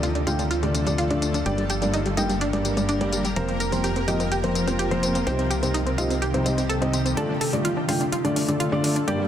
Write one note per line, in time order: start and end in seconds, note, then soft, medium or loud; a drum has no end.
0.00 1.44 D2 medium
0.00 3.33 D3 medium
0.00 1.44 F3 medium
0.00 1.44 A3 medium
0.00 1.44 F4 medium
0.00 0.11 F4 medium
0.00 1.44 A4 medium
0.00 closed hi-hat medium
0.00 tambourine soft
0.15 0.22 D4 medium
0.15 closed hi-hat soft
0.27 0.40 D3 medium
0.27 0.40 A3 medium
0.27 0.40 D4 medium
0.27 0.41 F4 medium
0.27 0.34 F4 medium
0.27 0.40 G5 medium
0.27 closed hi-hat medium
0.27 tambourine medium
0.39 0.46 D4 medium
0.39 closed hi-hat soft
0.39 tambourine soft
0.51 0.58 F4 medium
0.51 closed hi-hat medium
0.51 tambourine soft
0.63 0.84 D3 medium
0.63 0.84 A3 medium
0.63 0.84 D4 medium
0.63 0.70 D4 medium
0.63 0.84 F4 medium
0.63 0.84 D5 medium
0.63 closed hi-hat soft
0.75 0.82 D4 medium
0.75 closed hi-hat medium
0.75 tambourine medium
0.87 1.07 D3 medium
0.87 1.07 A3 medium
0.87 1.07 D4 medium
0.87 0.94 D4 medium
0.87 1.07 F4 medium
0.87 1.07 D5 medium
0.87 closed hi-hat soft
0.87 tambourine soft
0.98 1.06 F4 medium
0.98 closed hi-hat medium
0.98 tambourine soft
1.10 1.32 D3 medium
1.10 1.32 A3 medium
1.10 1.32 D4 medium
1.10 1.18 D4 medium
1.10 1.32 F4 medium
1.10 1.32 D5 medium
1.10 closed hi-hat soft
1.22 1.30 D4 medium
1.22 closed hi-hat medium
1.22 tambourine medium
1.34 1.42 D4 medium
1.34 closed hi-hat soft
1.34 tambourine soft
1.46 3.34 G1 medium
1.46 1.60 G2 medium
1.46 3.34 G3 medium
1.46 5.23 A#3 medium
1.46 1.60 A#3 medium
1.46 1.60 D4 medium
1.46 3.34 G4 medium
1.46 1.60 G4 medium
1.46 1.53 G4 medium
1.46 5.23 A#4 medium
1.46 1.60 D5 loud
1.46 closed hi-hat medium
1.46 tambourine soft
1.58 1.65 G3 medium
1.58 closed hi-hat soft
1.70 1.77 G4 medium
1.70 closed hi-hat medium
1.70 tambourine medium
1.82 1.95 G2 medium
1.82 1.89 G3 medium
1.82 1.95 A#3 medium
1.82 1.95 D4 medium
1.82 1.95 G4 medium
1.82 1.95 D5 medium
1.82 closed hi-hat soft
1.82 tambourine soft
1.94 2.01 D#4 medium
1.94 closed hi-hat medium
1.94 tambourine soft
2.06 2.13 G3 medium
2.06 closed hi-hat soft
2.17 2.31 G2 medium
2.17 2.31 A#3 medium
2.17 2.31 D4 medium
2.17 2.25 D#4 medium
2.17 2.31 G4 medium
2.17 2.31 G5 medium
2.17 closed hi-hat medium
2.17 tambourine medium
2.30 2.37 G3 medium
2.30 closed hi-hat soft
2.30 tambourine soft
2.41 2.49 D4 medium
2.41 closed hi-hat medium
2.41 tambourine soft
2.53 2.74 G2 medium
2.53 2.61 G3 medium
2.53 2.74 A#3 medium
2.53 2.74 D4 medium
2.53 2.74 G4 medium
2.53 2.74 D5 medium
2.53 closed hi-hat soft
2.65 2.73 G3 medium
2.65 closed hi-hat medium
2.65 tambourine medium
2.77 2.97 G2 medium
2.77 2.84 G3 medium
2.77 2.97 A#3 medium
2.77 2.97 D4 medium
2.77 2.97 G4 medium
2.77 2.97 D5 medium
2.77 closed hi-hat soft
2.77 tambourine soft
2.89 2.96 D4 medium
2.89 closed hi-hat medium
2.89 tambourine soft
3.01 3.22 G2 medium
3.01 3.08 G3 medium
3.01 3.22 A#3 medium
3.01 3.22 D4 medium
3.01 3.22 G4 medium
3.01 3.22 D5 loud
3.01 closed hi-hat soft
3.13 3.20 G3 medium
3.13 closed hi-hat medium
3.13 tambourine medium
3.25 3.32 G3 medium
3.25 closed hi-hat medium
3.25 tambourine soft
3.36 5.25 F1 medium
3.36 7.13 C3 medium
3.36 3.50 F3 loud
3.36 5.25 F3 medium
3.36 3.50 A#3 medium
3.36 3.50 C4 medium
3.36 5.25 F4 medium
3.36 3.50 F4 medium
3.36 3.44 A#4 medium
3.36 3.50 C5 loud
3.36 closed hi-hat medium
3.36 tambourine soft
3.49 3.56 C4 medium
3.49 closed hi-hat soft
3.60 3.68 A#4 medium
3.60 closed hi-hat medium
3.60 tambourine medium
3.72 3.86 F3 medium
3.72 3.86 A#3 medium
3.72 3.80 C4 medium
3.72 3.86 C4 medium
3.72 3.86 F4 medium
3.72 3.86 C5 medium
3.72 closed hi-hat soft
3.72 tambourine soft
3.84 3.91 G4 medium
3.84 closed hi-hat medium
3.84 tambourine soft
3.96 4.03 C4 medium
3.96 closed hi-hat soft
4.08 4.21 F3 medium
4.08 4.21 A#3 medium
4.08 4.21 C4 medium
4.08 4.21 F4 medium
4.08 4.15 G4 medium
4.08 4.21 D#5 medium
4.08 closed hi-hat medium
4.08 tambourine medium
4.20 4.27 C4 medium
4.20 closed hi-hat soft
4.20 tambourine soft
4.32 4.39 G4 medium
4.32 closed hi-hat medium
4.32 tambourine soft
4.44 4.65 F3 medium
4.44 4.65 A#3 medium
4.44 4.51 C4 medium
4.44 4.65 C4 medium
4.44 4.65 F4 medium
4.44 4.65 C5 medium
4.44 closed hi-hat soft
4.55 4.63 C4 medium
4.55 closed hi-hat medium
4.55 tambourine medium
4.67 4.88 F3 medium
4.67 4.88 A#3 medium
4.67 4.75 C4 medium
4.67 4.88 C4 medium
4.67 4.88 F4 medium
4.67 4.88 C5 medium
4.67 closed hi-hat medium
4.67 tambourine soft
4.79 4.87 G4 medium
4.79 closed hi-hat medium
4.79 tambourine soft
4.91 5.13 F3 medium
4.91 5.13 A#3 medium
4.91 4.99 C4 medium
4.91 5.13 C4 medium
4.91 5.13 F4 medium
4.91 5.13 C5 loud
4.91 closed hi-hat soft
5.03 5.10 C4 medium
5.03 closed hi-hat medium
5.03 tambourine medium
5.15 5.22 C4 medium
5.15 closed hi-hat medium
5.15 tambourine soft
5.27 7.15 C2 medium
5.27 5.40 C3 loud
5.27 7.15 D#3 medium
5.27 5.40 G3 medium
5.27 7.15 G3 medium
5.27 5.40 C4 medium
5.27 5.40 D#4 medium
5.27 7.15 D#4 medium
5.27 5.34 G4 medium
5.27 7.15 G4 medium
5.27 5.40 C5 loud
5.27 closed hi-hat medium
5.27 tambourine soft
5.39 5.46 C4 medium
5.39 closed hi-hat soft
5.50 5.58 G4 medium
5.50 closed hi-hat medium
5.50 tambourine medium
5.63 5.76 C3 medium
5.63 5.76 G3 medium
5.63 5.70 C4 medium
5.63 5.76 C4 medium
5.63 5.76 D#4 medium
5.63 5.76 C5 medium
5.63 closed hi-hat medium
5.63 tambourine soft
5.74 5.82 D#4 medium
5.74 closed hi-hat medium
5.74 tambourine soft
5.86 5.94 C4 medium
5.86 closed hi-hat soft
5.98 6.12 C3 medium
5.98 6.12 G3 medium
5.98 6.12 C4 medium
5.98 6.12 D#4 medium
5.98 6.06 F4 medium
5.98 6.12 D#5 medium
5.98 closed hi-hat medium
5.98 tambourine medium
6.10 6.18 C4 medium
6.10 closed hi-hat medium
6.10 tambourine soft
6.22 6.29 G4 medium
6.22 closed hi-hat medium
6.22 tambourine soft
6.34 6.44 C3 medium
6.34 6.44 G3 medium
6.34 6.41 C4 medium
6.34 6.44 C4 medium
6.34 6.44 D#4 medium
6.34 6.44 C5 medium
6.34 closed hi-hat soft
6.46 6.60 C3 medium
6.46 6.60 G3 medium
6.46 6.53 C4 medium
6.46 6.60 C4 medium
6.46 6.60 D#4 medium
6.46 6.60 D#5 medium
6.46 closed hi-hat medium
6.46 tambourine medium
6.58 6.65 C4 medium
6.58 closed hi-hat medium
6.58 tambourine soft
6.69 6.77 A4 loud
6.69 closed hi-hat medium
6.69 tambourine soft
6.82 6.95 C3 medium
6.82 6.95 G3 medium
6.82 6.89 C4 medium
6.82 6.95 C4 medium
6.82 6.95 D#4 medium
6.82 6.95 D#5 loud
6.82 closed hi-hat soft
6.93 7.01 C4 medium
6.93 closed hi-hat medium
6.93 tambourine medium
7.05 7.13 C4 medium
7.05 closed hi-hat medium
7.05 tambourine soft
7.17 7.31 D3 loud
7.17 9.28 D3 medium
7.17 9.06 F3 medium
7.17 7.31 A3 medium
7.17 9.06 A3 medium
7.17 7.31 D4 medium
7.17 7.31 F4 medium
7.17 9.06 F4 medium
7.17 7.25 A4 medium
7.17 9.06 A4 medium
7.17 7.31 D5 loud
7.17 closed hi-hat medium
7.29 7.37 D4 medium
7.41 7.49 A4 medium
7.41 open hi-hat loud
7.53 7.66 D3 medium
7.53 7.66 A3 medium
7.53 7.66 D4 medium
7.53 7.60 D4 medium
7.53 7.66 F4 medium
7.53 7.66 D5 medium
7.53 closed hi-hat medium
7.65 7.72 F4 medium
7.65 closed hi-hat medium
7.77 7.84 D4 medium
7.89 8.02 D3 medium
7.89 8.02 A3 medium
7.89 8.02 D4 medium
7.89 7.96 F4 medium
7.89 8.02 F4 medium
7.89 8.02 G5 medium
7.89 open hi-hat loud
8.01 8.08 D4 medium
8.01 closed hi-hat medium
8.12 8.20 F4 medium
8.12 closed hi-hat medium
8.25 8.46 D3 medium
8.25 8.46 A3 medium
8.25 8.46 D4 medium
8.25 8.32 D4 medium
8.25 8.46 F4 medium
8.25 8.46 D5 medium
8.25 closed hi-hat soft
8.36 8.44 D4 medium
8.36 open hi-hat loud
8.48 8.69 D3 medium
8.48 8.69 A3 medium
8.48 8.69 D4 medium
8.48 8.56 D4 medium
8.48 8.69 F4 medium
8.48 8.69 D5 medium
8.48 closed hi-hat medium
8.60 8.68 F4 medium
8.60 closed hi-hat medium
8.72 8.94 D3 medium
8.72 8.94 A3 medium
8.72 8.94 D4 medium
8.72 8.79 D4 medium
8.72 8.94 F4 medium
8.72 8.94 D5 loud
8.84 8.91 D4 medium
8.84 open hi-hat loud
8.96 9.03 D4 medium
8.96 closed hi-hat medium
9.07 9.21 G2 medium
9.07 9.28 G3 medium
9.07 9.28 A#3 medium
9.07 9.21 A#3 medium
9.07 9.21 D4 medium
9.07 9.28 G4 medium
9.07 9.21 G4 medium
9.07 9.15 G4 medium
9.07 9.28 A#4 medium
9.07 9.21 D5 loud
9.07 closed hi-hat medium
9.20 9.27 G3 medium